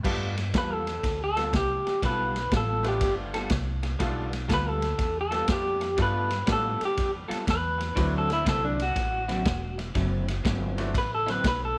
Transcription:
0.03 G2 G3 A3 B3 D4 F4 A4, kick, snare, crash
0.36 muted clean electric guitar stroke, snare, ride
0.54 E2 G3 B3 F4 A4, kick, snare, ride
0.58 B4
0.73 A4
0.87 muted clean electric guitar stroke, snare, ride
1.03 D2, muted clean electric guitar stroke, kick, snare, ride
1.24 A4
1.36 G3 B3 F4 A4, snare, ride
1.53 C2 G4, muted clean electric guitar stroke, kick, snare, ride
1.85 muted upright bass stroke, muted clean electric guitar stroke, snare, ride
2.02 B1 G3 B3 F4 A4 B4, kick, snare, ride
2.36 muted clean electric guitar stroke, snare, ride
2.51 A1 G3 B3 F4 A4, kick, snare, ride
2.57 A4
2.83 G3 A3 B3 D4 F4, muted clean electric guitar stroke, snare, ride
2.88 G4
3.01 G1, muted clean electric guitar stroke, kick, snare, ride
3.34 G3 B3 F4 A4, snare, ride
3.50 C2, muted clean electric guitar stroke, kick, snare, ride
3.83 muted clean electric guitar stroke, snare, ride
3.99 B1 G3 A3 B3 D4 F4 A4, kick, snare, ride
4.32 muted clean electric guitar stroke, snare, ride
4.48 D2 G3 B3 F4 A4, kick, snare, ride
4.54 B4
4.69 A4
4.80 muted clean electric guitar stroke, snare, ride
4.98 E2, muted clean electric guitar stroke, kick, snare, ride
5.21 A4
5.31 G3 B3 F4 A4, snare, ride
5.47 F2 G3 A3 B3 D4 F4, muted clean electric guitar stroke, kick, snare, ride
5.52 G4
5.81 muted clean electric guitar stroke, snare, ride
5.97 G2 G3 A3 B3 D4 F4 A4, kick, snare, ride
6.02 B4
6.31 muted clean electric guitar stroke, snare, ride
6.46 A2 G3 A3 B3 D4 F4 G4 A4, kick, snare, ride
6.52 A4
6.81 muted clean electric guitar stroke, muted upright bass stroke, snare, ride
6.85 G4
6.96 F2, muted clean electric guitar stroke, kick, snare, ride
7.28 G3 B3 F4 A4, muted upright bass stroke, snare, ride
7.46 E2, muted clean electric guitar stroke, kick, snare, ride
7.50 B4
7.78 muted clean electric guitar stroke, snare, ride
7.95 D2 D3 F#3 A3 C4 D4 E4, kick, snare, ride
8.18 A4
8.29 muted clean electric guitar stroke, snare, ride
8.33 E4
8.45 C2 D3 F#3 C4 E4 A4, kick, snare, ride
8.65 D4
8.79 F#4, muted clean electric guitar stroke, snare, ride
8.96 A1, muted clean electric guitar stroke, kick, snare, ride
9.28 D3 F#3 C4 E4, snare, ride
9.45 E1, muted clean electric guitar stroke, kick, snare, ride
9.78 muted clean electric guitar stroke, snare, ride
9.95 F#1 D3 F#3 C4 E4, kick, snare, ride
10.28 muted clean electric guitar stroke, snare, ride
10.44 G1 D3 F#3 C4 E4, kick, snare, ride
10.76 F#3 A3 C4 D4 E4, muted clean electric guitar stroke, snare, ride
10.94 A1 B4, muted clean electric guitar stroke, kick, snare, ride
11.15 A4
11.26 D3 F#3 C4 E4 B4, snare, ride
11.44 B1 B4, muted clean electric guitar stroke, kick, snare, ride
11.65 A4

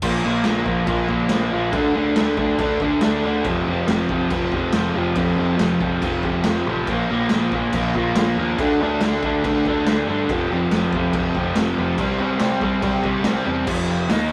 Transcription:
0.02 A#1 A#2 F3 A#3, kick, crash
0.24 A#1 A#2 F3 A#3
0.44 A#1 A#2 F3 A#3, snare, crash
0.65 A#1 A#2 F3 A#3, kick
0.87 A#1 A#2 F3 A#3, kick, crash
1.08 A#1 A#2 F3 A#3, kick
1.29 A#1 A#2 F3 A#3, snare, crash
1.51 A#1 A#2 F3 A#3
1.73 D2 D3 A3 D4, kick, crash
1.95 D2 D3 A3 D4
2.16 D2 D3 A3 D4, snare, crash
2.37 D2 D3 A3 D4, kick
2.58 D2 D3 A3 D4, kick, crash
2.80 D2 D3 A3, kick
2.84 D4
3.01 D2 D3 A3 D4, snare, crash
3.23 D2 D3 A3 D4
3.45 F1 F2 C3 F3, kick, crash
3.66 F1 F2 C3
3.70 F3
3.87 F1 F2 C3 F3, snare, crash
4.09 F1 F2 C3 F3, kick
4.30 F1 F2 C3 F3, kick, crash
4.52 F1 F2 C3, kick
4.56 F3
4.73 F1 F2 C3 F3, snare, crash
4.95 F1 F2 C3 F3
5.15 F1 F2 C3 F3, kick, crash
5.38 F1 F2 C3 F3
5.58 F1 F2 C3 F3, snare, crash
5.81 F1 F2 C3 F3, kick
6.02 F1 F2 C3 F3, kick, crash
6.23 F1 F2 C3 F3, kick
6.44 F1 F2 C3, snare, crash
6.48 F3
6.66 A1 F2 C3 F3
6.87 A#1 A#2 F3, kick, crash
6.91 A#3
7.10 A#1 A#2 F3 A#3
7.29 A#1 A#2 F3 A#3, snare, crash
7.52 A#1 A#2 F3 A#3, kick
7.73 A#1 A#2 F3 A#3, kick, crash
7.94 A#1 A#2 F3 A#3, kick
8.15 A#1 A#2 F3 A#3, snare, crash
8.35 D#2 A#2
8.39 F3 A#3
8.58 D2 D3 A3, kick, crash
8.62 D4
8.78 D2 D3 A3
8.83 D4
9.00 D2 D3 A3, snare, crash
9.05 D4
9.23 D2 D3 A3 D4, kick
9.44 D2 D3 A3 D4, kick, crash
9.65 D2 D3 A3 D4, kick
9.86 D2 D3 A3 D4, snare, crash
10.07 G2 D3 A3 D4
10.29 F1 F2 C3 F3, kick, crash
10.48 F1
10.52 F2 C3 F3
10.70 F1 F2 C3, snare, crash
10.75 F3
10.93 F1 F2 C3, kick
10.97 F3
11.13 F1 F2 C3, kick, crash
11.17 F3
11.35 F1 F2 C3 F3, kick
11.56 F1 F2 C3 F3, snare, crash
11.77 F1 F2 C3 F3
11.98 C2 C3 G3 C4, kick, crash
12.18 C2 C3 G3
12.23 C4
12.39 C2 C3 G3 C4, snare, crash
12.61 C2 C3 G3 C4, kick
12.82 C2 C3 G3 C4, kick, crash
13.03 C2 C3 G3 C4, kick
13.24 C2 C3 G3 C4, snare, crash
13.45 E2 C3 G3 C4
13.66 F1 F2 C3 F3, kick, crash
14.08 D#2 D#3 A#3 D#4, snare, open hi-hat

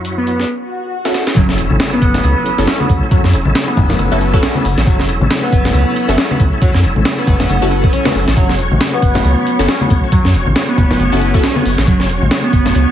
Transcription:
Already playing: F#2 F#3 E4 F#4
0.05 closed hi-hat
0.17 B3
0.26 B3, closed hi-hat
0.40 snare
0.49 swell
1.05 C#4 E4 F#4 A4, snare
1.14 snare
1.27 snare
1.36 F#1 F#3 C#4 E4 A4, kick, closed hi-hat, impact
1.49 snare
1.58 E1, closed hi-hat
1.70 A1, high conga
1.80 snare, closed hi-hat
1.92 B3
2.02 F#1 B3, kick, closed hi-hat
2.14 snare, low conga
2.23 C#2 B3, closed hi-hat, high conga
2.36 B3
2.46 closed hi-hat
2.58 F#1 C#4 E4 F#4 A4, snare
2.67 C#4, snare, closed hi-hat
2.80 B3, high conga
2.89 C#2, kick, closed hi-hat
3.11 F#2 F#3, kick, closed hi-hat
3.24 F#2, snare
3.33 E1, closed hi-hat
3.45 A1, high conga
3.55 snare, closed hi-hat
3.68 B3
3.77 F#1 B3, kick, closed hi-hat, low conga
3.89 snare, low conga
3.98 F#1 B3, closed hi-hat, high conga
4.11 F#1 B3 C#4 E4 F#4 A4, closed hi-hat
4.21 closed hi-hat
4.33 C#4 E4 F#4 A4, kick
4.42 C#4, snare, closed hi-hat
4.55 B3, high conga
4.65 F#1, open hi-hat
4.77 A1, snare
4.86 F#1 F#3, kick, closed hi-hat
5.00 snare
5.08 E1, closed hi-hat
5.21 A1, high conga
5.31 snare, closed hi-hat
5.43 B3
5.52 F#1 B3, kick, closed hi-hat
5.65 snare, low conga
5.74 C#2 B3, closed hi-hat, high conga
5.87 B3
5.96 closed hi-hat
6.08 F#1 C#4 E4 F#4 A4, snare
6.18 C#4, snare, closed hi-hat
6.31 B3, high conga
6.40 C#2, kick, closed hi-hat
6.62 F#2 F#3, kick, closed hi-hat
6.74 F#2, snare
6.83 E1, closed hi-hat
6.96 A1, high conga
7.05 snare, closed hi-hat
7.18 B3
7.27 F#1 B3, kick, closed hi-hat, low conga
7.40 snare, low conga
7.49 F#1 B3, closed hi-hat, high conga
7.62 F#1 B3 C#4 E4 F#4 A4, closed hi-hat
7.71 closed hi-hat
7.84 kick
7.93 C#4, closed hi-hat
8.05 B3 C#4 E4 F#4 A4, snare, high conga
8.15 F#1, open hi-hat
8.28 A1, snare
8.36 F#1 F#3 F#4 C#5, kick, closed hi-hat
8.49 snare
8.59 E1, closed hi-hat
8.71 A1, high conga
8.81 snare, closed hi-hat
8.93 B3
9.02 F#1 B3, kick, closed hi-hat
9.15 snare, low conga
9.24 C#2 B3, closed hi-hat, high conga
9.37 B3
9.47 closed hi-hat
9.59 F#1 C#4 E4 F#4 A4, snare
9.68 C#4, snare, closed hi-hat
9.81 B3, high conga
9.90 C#2, kick, closed hi-hat
10.12 F#2 F#3, kick, closed hi-hat
10.24 F#2, snare
10.34 E1, closed hi-hat
10.46 A1, high conga
10.56 snare, closed hi-hat
10.68 B3
10.77 F#1 B3, kick, closed hi-hat, low conga
10.90 snare, low conga
10.99 F#1 B3, closed hi-hat, high conga
11.12 F#1 B3 C#4 E4 F#4 A4, closed hi-hat
11.22 closed hi-hat
11.34 C#4 E4 F#4 A4, kick
11.43 C#4, snare, closed hi-hat
11.55 B3, high conga
11.65 F#1, open hi-hat
11.78 A1, snare
11.87 F#1 F#3, kick, closed hi-hat
12.00 snare
12.09 E1, closed hi-hat
12.22 A1, high conga
12.31 snare, closed hi-hat
12.44 B3
12.53 F#1 B3, kick, closed hi-hat
12.65 snare, low conga
12.75 C#2 B3, closed hi-hat, high conga
12.87 B3

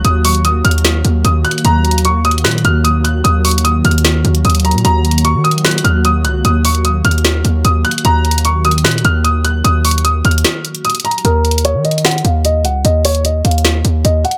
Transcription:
Already playing: D#3 F#3 A#3 F#4
0.05 D#2 D#6, closed hi-hat
0.25 C#6, closed hi-hat, open hi-hat
0.35 closed hi-hat
0.45 D#6, closed hi-hat
0.65 D#2 F6, closed hi-hat
0.71 closed hi-hat
0.78 closed hi-hat
0.85 snare, closed hi-hat
1.05 D#2, closed hi-hat
1.25 D#2 D#6, closed hi-hat
1.45 F#6, closed hi-hat
1.51 closed hi-hat
1.58 closed hi-hat
1.65 D#2 F#3 F#4 A#5, closed hi-hat
1.85 closed hi-hat
1.91 closed hi-hat
1.98 closed hi-hat
2.05 C#6, closed hi-hat
2.25 D#6, closed hi-hat
2.31 closed hi-hat
2.38 closed hi-hat
2.44 A#2 F#6, snare, closed hi-hat
2.51 closed hi-hat
2.58 closed hi-hat
2.65 D#2 F6, closed hi-hat
2.84 D#6, closed hi-hat
3.04 F#6, closed hi-hat
3.24 D#2 D#6, closed hi-hat
3.45 C#6, closed hi-hat, open hi-hat
3.51 closed hi-hat
3.58 closed hi-hat
3.65 D#6, closed hi-hat
3.85 D#2 F6, closed hi-hat
3.91 closed hi-hat
3.98 closed hi-hat
4.05 snare, closed hi-hat
4.25 D#2, closed hi-hat
4.35 closed hi-hat
4.45 D#2 D#6, closed hi-hat
4.50 closed hi-hat
4.55 closed hi-hat
4.60 closed hi-hat
4.65 A#5, closed hi-hat
4.71 A#2, closed hi-hat
4.78 closed hi-hat
4.85 D#2 A#3 A#5, closed hi-hat
5.05 closed hi-hat
5.11 closed hi-hat
5.18 closed hi-hat
5.25 C#6, closed hi-hat
5.35 D#3
5.44 D#6, closed hi-hat
5.51 closed hi-hat
5.58 closed hi-hat
5.65 F#6, snare, closed hi-hat
5.71 closed hi-hat
5.78 closed hi-hat
5.84 D#2 F6, closed hi-hat
6.05 D#6, closed hi-hat
6.25 C#2 F#6, closed hi-hat
6.45 D#2 D#6, closed hi-hat
6.65 C#6, closed hi-hat, open hi-hat
6.75 closed hi-hat
6.85 D#6, closed hi-hat
7.05 D#2 F6, closed hi-hat
7.11 closed hi-hat
7.18 closed hi-hat
7.25 snare, closed hi-hat
7.45 D#2, closed hi-hat
7.65 D#2 D#6, closed hi-hat
7.85 F#6, closed hi-hat
7.91 closed hi-hat
7.98 closed hi-hat
8.05 D#2 D#3 A#5, closed hi-hat
8.25 closed hi-hat
8.31 closed hi-hat
8.38 closed hi-hat
8.45 C#6, closed hi-hat
8.65 D#6, closed hi-hat
8.71 closed hi-hat
8.78 closed hi-hat
8.84 A#2 F#6, snare, closed hi-hat
8.91 closed hi-hat
8.98 closed hi-hat
9.05 D#2 F6, closed hi-hat
9.24 D#6, closed hi-hat
9.45 F#6, closed hi-hat
9.64 D#2 D#6, closed hi-hat
9.85 C#6, closed hi-hat, open hi-hat
9.91 closed hi-hat
9.98 closed hi-hat
10.05 D#6, closed hi-hat
10.25 D#2 F6, closed hi-hat
10.31 closed hi-hat
10.38 closed hi-hat
10.45 snare, closed hi-hat
10.65 closed hi-hat
10.75 closed hi-hat
10.85 D#6, closed hi-hat
10.90 closed hi-hat
10.95 closed hi-hat
11.00 closed hi-hat
11.05 A#5, closed hi-hat
11.11 closed hi-hat
11.18 closed hi-hat
11.25 D#2 A#4, closed hi-hat
11.45 closed hi-hat
11.51 closed hi-hat
11.58 closed hi-hat
11.65 C#5, closed hi-hat
11.75 D#3
11.84 D#5, closed hi-hat
11.91 closed hi-hat
11.98 closed hi-hat
12.05 F#5, snare, closed hi-hat
12.11 closed hi-hat
12.18 closed hi-hat
12.24 D#2 F5, closed hi-hat
12.45 D#5, closed hi-hat
12.65 C#2 F#5, closed hi-hat
12.85 D#2 D#5, closed hi-hat
13.05 C#5, closed hi-hat, open hi-hat
13.15 closed hi-hat
13.25 D#5, closed hi-hat
13.45 D#2 F5, closed hi-hat
13.51 closed hi-hat
13.58 closed hi-hat
13.65 snare, closed hi-hat
13.85 D#2, closed hi-hat
14.05 D#2 D#5, closed hi-hat
14.24 F#5, closed hi-hat
14.31 closed hi-hat

